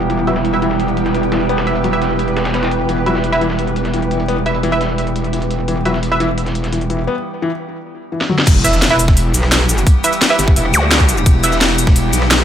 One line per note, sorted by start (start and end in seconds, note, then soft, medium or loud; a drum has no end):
0.00 2.87 E1 medium
0.00 7.04 E3 medium
0.00 7.04 G3 medium
0.00 7.04 B3 medium
0.00 7.07 E4 medium
0.00 7.04 G4 medium
0.00 7.07 B4 medium
0.00 7.07 G5 medium
0.10 0.16 E3 medium
0.10 closed hi-hat medium
0.27 0.34 F#3 medium
0.27 0.41 E4 medium
0.27 0.41 B4 medium
0.27 0.41 E5 medium
0.27 closed hi-hat medium
0.36 snare soft
0.45 closed hi-hat medium
0.53 0.67 E4 loud
0.53 0.67 B4 medium
0.53 0.67 E5 loud
0.62 0.69 E3 loud
0.62 closed hi-hat medium
0.71 snare soft
0.80 closed hi-hat medium
0.88 closed hi-hat soft
0.97 closed hi-hat medium
1.06 snare soft
1.06 closed hi-hat soft
1.14 1.18 E3 medium
1.14 closed hi-hat medium
1.23 closed hi-hat soft
1.32 1.42 E3 medium
1.32 snare loud
1.32 closed hi-hat medium
1.49 1.56 B3 loud
1.49 closed hi-hat medium
1.58 snare loud
1.58 closed hi-hat medium
1.67 1.75 E4 medium
1.67 1.75 B4 medium
1.67 1.75 E5 medium
1.67 closed hi-hat medium
1.76 closed hi-hat medium
1.84 1.88 F#3 medium
1.84 closed hi-hat medium
1.93 2.01 E4 medium
1.93 2.01 B4 medium
1.93 2.01 E5 medium
1.93 closed hi-hat soft
2.02 snare soft
2.02 closed hi-hat medium
2.19 closed hi-hat medium
2.28 closed hi-hat soft
2.37 snare loud
2.37 closed hi-hat medium
2.45 snare loud
2.45 closed hi-hat soft
2.45 closed hi-hat medium
2.54 2.58 B3 medium
2.54 snare loud
2.54 closed hi-hat medium
2.63 snare loud
2.63 closed hi-hat medium
2.63 closed hi-hat soft
2.71 closed hi-hat medium
2.89 7.07 E1 medium
2.89 2.96 E3 medium
2.89 closed hi-hat medium
3.06 3.13 F#3 medium
3.06 3.20 E4 medium
3.06 3.20 B4 medium
3.06 3.20 E5 medium
3.06 closed hi-hat medium
3.15 snare soft
3.24 closed hi-hat medium
3.32 3.46 E4 loud
3.32 3.46 B4 medium
3.32 3.46 E5 loud
3.41 3.48 E3 loud
3.41 closed hi-hat medium
3.50 snare soft
3.59 closed hi-hat medium
3.67 closed hi-hat soft
3.76 closed hi-hat medium
3.85 snare soft
3.85 closed hi-hat soft
3.94 3.98 E3 medium
3.94 closed hi-hat medium
4.02 closed hi-hat soft
4.11 4.21 E3 medium
4.11 closed hi-hat medium
4.20 closed hi-hat soft
4.28 4.35 B3 medium
4.28 closed hi-hat medium
4.46 4.54 E4 medium
4.46 4.54 B4 medium
4.46 4.54 E5 medium
4.46 closed hi-hat medium
4.55 closed hi-hat soft
4.63 4.70 E3 loud
4.63 closed hi-hat medium
4.72 4.80 E4 medium
4.72 4.80 B4 medium
4.72 4.80 E5 loud
4.72 closed hi-hat soft
4.81 snare soft
4.81 closed hi-hat medium
4.98 closed hi-hat medium
5.07 closed hi-hat soft
5.16 closed hi-hat medium
5.24 closed hi-hat soft
5.33 5.37 E3 medium
5.33 closed hi-hat medium
5.42 closed hi-hat soft
5.51 closed hi-hat medium
5.68 5.75 E3 medium
5.68 closed hi-hat medium
5.85 5.92 F#3 medium
5.85 5.99 E4 medium
5.85 5.99 B4 medium
5.85 5.99 E5 medium
5.85 closed hi-hat medium
5.94 snare soft
6.03 closed hi-hat medium
6.11 6.25 E4 loud
6.11 6.25 B4 medium
6.11 6.25 E5 loud
6.20 6.27 E3 loud
6.20 closed hi-hat medium
6.38 closed hi-hat medium
6.46 snare soft
6.46 closed hi-hat soft
6.55 closed hi-hat medium
6.64 snare soft
6.64 closed hi-hat soft
6.72 6.77 E3 medium
6.72 closed hi-hat medium
6.81 closed hi-hat soft
6.90 7.00 E3 medium
6.90 closed hi-hat medium
7.07 7.14 B3 medium
7.42 7.49 E3 loud
8.12 8.19 E3 medium
8.21 snare medium
8.30 8.34 F#3 medium
8.30 mid tom medium
8.38 snare medium
8.47 9.33 E1 loud
8.47 12.44 E3 medium
8.47 12.44 G3 medium
8.47 12.44 B3 medium
8.47 12.44 G4 medium
8.47 kick loud
8.47 closed hi-hat medium
8.47 crash medium
8.47 impact medium
8.64 8.78 E4 medium
8.64 8.78 B4 medium
8.64 8.78 E5 medium
8.64 closed hi-hat medium
8.64 closed hi-hat loud
8.64 cabasa medium
8.73 snare soft
8.73 cabasa soft
8.82 snare loud
8.82 closed hi-hat medium
8.91 9.04 E4 loud
8.91 9.04 B4 medium
8.91 9.04 E5 loud
8.99 closed hi-hat medium
8.99 closed hi-hat loud
8.99 cabasa medium
9.08 kick loud
9.08 snare soft
9.17 closed hi-hat medium
9.34 9.85 B1 loud
9.34 closed hi-hat medium
9.34 closed hi-hat loud
9.34 cabasa medium
9.43 cross-stick soft
9.43 snare soft
9.52 snare loud
9.52 closed hi-hat medium
9.69 closed hi-hat medium
9.69 closed hi-hat loud
9.69 cabasa medium
9.78 closed hi-hat soft
9.78 cabasa soft
9.87 kick loud
9.87 closed hi-hat medium
10.04 10.12 E4 medium
10.04 10.12 B4 medium
10.04 10.12 E5 loud
10.04 closed hi-hat medium
10.04 cabasa medium
10.13 closed hi-hat soft
10.13 cabasa soft
10.21 snare loud
10.21 closed hi-hat medium
10.30 10.39 E4 medium
10.30 10.39 B4 medium
10.30 10.39 E5 loud
10.30 cross-stick medium
10.39 10.55 G1 medium
10.39 snare soft
10.39 closed hi-hat medium
10.39 cabasa medium
10.48 kick loud
10.56 10.72 E1 loud
10.56 closed hi-hat medium
10.65 cross-stick soft
10.74 11.25 D2 loud
10.74 closed hi-hat medium
10.74 zap medium
10.74 cabasa medium
10.91 snare loud
10.91 closed hi-hat medium
11.00 kick medium
11.00 closed hi-hat soft
11.09 closed hi-hat medium
11.09 cabasa medium
11.17 cabasa soft
11.26 12.12 E1 loud
11.26 kick loud
11.26 closed hi-hat medium
11.43 11.57 E4 medium
11.43 11.57 B4 medium
11.43 11.57 E5 medium
11.43 closed hi-hat medium
11.43 cabasa medium
11.52 snare soft
11.52 cabasa soft
11.61 snare loud
11.61 closed hi-hat medium
11.78 closed hi-hat medium
11.78 cabasa medium
11.87 kick loud
11.87 snare soft
11.96 closed hi-hat medium
12.13 12.44 B1 loud
12.13 closed hi-hat medium
12.13 cabasa medium
12.22 cross-stick soft
12.22 snare soft
12.31 snare loud
12.31 closed hi-hat medium